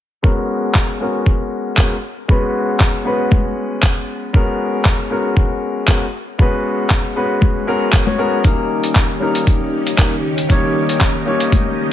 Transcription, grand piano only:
0.23 0.97 G#3 medium
0.23 0.98 B3 medium
0.23 0.98 C#4 medium
0.23 0.98 F#4 medium
0.23 0.98 A#4 medium
1.00 1.75 G#3 medium
1.00 1.75 B3 medium
1.00 1.75 C#4 medium
1.00 1.75 F#4 medium
1.00 1.76 A#4 medium
1.78 1.93 G#3 medium
1.78 1.93 B3 medium
1.78 1.93 C#4 medium
1.78 1.93 F#4 medium
1.78 1.93 A#4 medium
2.28 3.03 G#3 medium
2.28 3.03 B3 medium
2.28 3.03 C#4 medium
2.28 3.03 F#4 medium
2.28 3.04 B4 medium
3.05 4.31 G#3 medium
3.05 4.31 B3 medium
3.05 4.31 C#4 medium
3.05 4.31 F#4 medium
3.05 4.32 B4 medium
4.33 5.08 G#3 medium
4.33 5.08 B3 medium
4.33 5.08 C#4 medium
4.33 5.08 F#4 medium
4.33 5.09 A#4 medium
5.10 5.85 G#3 medium
5.10 5.85 B3 medium
5.10 5.85 C#4 medium
5.10 5.85 F#4 medium
5.10 5.86 A#4 medium
5.87 6.03 G#3 medium
5.87 6.03 B3 medium
5.87 6.03 C#4 medium
5.87 6.03 F#4 medium
5.87 6.03 A#4 medium
6.38 7.13 G#3 medium
6.38 7.13 B3 medium
6.38 7.13 C#4 medium
6.38 7.14 F#4 medium
6.38 7.14 B4 medium
7.16 7.65 G#3 medium
7.16 7.65 B3 medium
7.16 7.65 C#4 medium
7.16 7.65 F#4 medium
7.16 7.65 B4 medium
7.67 8.03 G#3 medium
7.67 8.04 B3 medium
7.67 8.04 C#4 medium
7.67 8.04 F#4 medium
7.67 8.04 A#4 medium
8.06 8.17 G#3 medium
8.06 8.17 B3 medium
8.06 8.17 C#4 medium
8.06 8.17 F#4 medium
8.06 8.17 C#5 medium
8.18 8.41 G#3 medium
8.18 8.41 B3 medium
8.18 8.42 C#4 medium
8.18 8.42 F#4 medium
8.18 8.42 A#4 medium
8.43 9.18 G3 medium
8.43 9.18 A#3 medium
8.43 9.19 C#4 medium
8.43 9.19 D#4 medium
8.43 9.19 A#4 medium
9.20 9.95 G3 medium
9.20 9.95 A#3 medium
9.20 9.96 C#4 medium
9.20 9.96 D#4 medium
9.20 9.96 A#4 medium
9.98 10.13 G3 medium
9.98 10.13 A#3 medium
9.98 10.14 C#4 medium
9.98 10.14 D#4 medium
9.98 10.14 A#4 medium
10.49 11.23 G3 medium
10.49 11.24 A#3 medium
10.49 11.24 C#4 medium
10.49 11.24 D#4 medium
10.49 11.24 C#5 medium
11.26 11.93 G3 medium
11.26 11.93 A#3 medium
11.26 11.93 C#4 medium
11.26 11.93 D#4 medium
11.26 11.93 C#5 medium

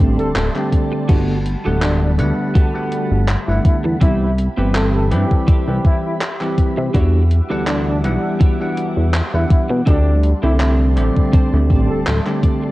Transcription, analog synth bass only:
0.00 0.18 A1 loud
0.19 0.33 D1 soft
0.36 0.50 D1 loud
1.09 1.56 G1 loud
1.65 2.20 D1 medium
2.19 2.32 D2 medium
3.12 3.36 G1 loud
3.48 3.60 G1 medium
3.85 3.97 E2 medium
4.02 4.48 C2 loud
4.58 5.13 G1 loud
5.12 5.25 G2 medium
5.68 5.79 C2 medium
6.77 6.89 C3 loud
6.94 7.41 E2 loud
7.51 8.06 D2 loud
8.04 8.18 B1 medium
8.97 9.22 E2 loud
9.34 9.45 E2 medium
9.70 9.82 B2 medium
9.87 10.34 D2 loud
10.44 10.98 C2 loud
10.97 11.11 A1 medium
11.53 11.72 D2 medium
11.70 11.89 A1 loud
11.90 12.03 D1 soft
12.07 12.20 D1 loud

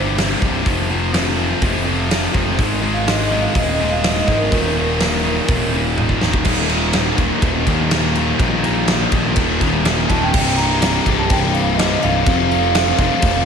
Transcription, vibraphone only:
2.94 3.09 F5 medium
3.10 3.24 D#5 medium
3.25 3.40 D#5 medium
3.40 3.56 F5 medium
3.58 3.72 D#5 loud
3.74 3.89 D#5 medium
3.91 4.05 F5 loud
4.06 4.20 D#5 medium
4.22 4.37 D#5 medium
4.37 5.78 A#4 loud
10.10 10.22 A5 loud
10.23 10.59 G5 medium
10.57 11.19 A#5 loud
11.19 11.31 A5 loud
11.29 11.55 G5 loud
11.53 11.78 F5 medium
11.77 12.02 D#5 medium
12.02 12.47 F5 loud
12.49 13.45 F5 loud

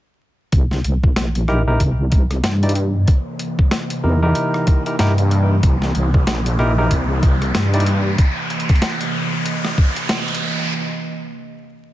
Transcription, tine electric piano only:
1.48 1.61 D#4 medium
1.48 1.61 E4 medium
1.48 1.61 G4 medium
1.48 1.61 A#4 loud
1.67 1.81 D#4 medium
1.67 1.81 E4 medium
1.67 1.81 G4 medium
1.67 1.81 A#4 medium
2.63 2.72 D#4 medium
2.63 2.72 E4 medium
2.63 2.72 G4 medium
2.63 2.72 D5 medium
4.04 4.20 D#4 medium
4.04 4.20 E4 medium
4.04 4.20 G4 medium
4.04 4.20 A#4 medium
4.23 4.82 D#4 medium
4.23 4.82 E4 medium
4.23 4.82 G4 medium
4.23 4.82 A#4 medium
4.86 4.95 D#4 medium
4.86 4.95 E4 medium
4.86 4.95 G4 medium
4.86 4.95 A#4 medium
4.99 5.12 D#4 medium
4.99 5.12 E4 medium
4.99 5.12 G4 medium
4.99 5.12 A#4 loud
6.59 6.71 D#4 loud
6.59 6.71 E4 medium
6.59 6.71 G4 medium
6.59 6.71 A#4 loud
6.78 6.92 D#4 medium
6.78 6.92 E4 medium
6.78 6.92 G4 medium
6.78 6.92 A#4 loud
7.74 7.82 D#4 medium
7.74 7.82 E4 medium
7.74 7.82 G4 medium
7.74 7.82 D5 medium

